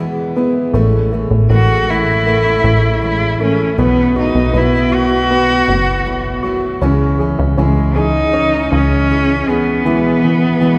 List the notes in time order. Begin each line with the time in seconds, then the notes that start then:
Already playing: E2 E3 B3
0.00 B2 E3 G#3 B3 E4
0.36 E3 G#3 B3 E4
0.73 A1 A2 E3 G#3 A3 C#4 E4
1.11 E3 G#3 A3 C#4 E4
1.31 A1
1.49 A1 A2 E3 G#3 A3 C#4 E4 F#4
1.68 G#3 C#4 E4
1.87 E3 G#3 A3 C#4 E4
2.06 G#3 C#4 E4
2.27 A3
2.44 G#3 C#4 E4
2.63 A1 E3 G#3 C#4 E4
2.82 G#3 C#4 E4
3.02 A2 E3 G#3 C#4 E4
3.39 E3 G#3 A3 C#4 E4
3.78 B1 B2 F#3 A3 B3 E4
4.15 F#3 A3 B3 D#4 F#4
4.35 B1
4.53 B1 B2 F#3 A3 B3 E4
4.57 E4
4.73 A3 B3 E4
4.91 F#3 A3 B3 E4 F#4
5.10 A3 B3 E4
5.31 B3
5.49 A3 B3 E4
5.67 F#1 F#3 A3 B3 E4
5.87 A3 B3 E4
6.05 B2 F#3 A3 B3 E4
6.43 F#3 A3 B3 E4 F#4
6.81 C#2 C#3 E3 G#3 C#4 E4
7.19 E3 G#3 C#4 E4 G#4
7.39 C#2
7.57 C#2 C#3 E3 G#3 C#4 E4
7.76 G#3 C#4 E4
7.95 E3 G#3 C#4 D#4 E4 G#4
8.15 C#4
8.33 C#4
8.52 G#3 C#4 E4
8.71 C#2 E3 G#3 C#4 E4
8.91 G#3 C#4 E4
9.09 C#3 E3 G#3 C#4 E4
9.47 E3 G#3 B3 C#4 E4 G#4
9.85 E2 B2 E3 G#3 B3 E4
10.22 E3 G#3 B3 E4
10.60 E2 B2 E3 G#3 B3 E4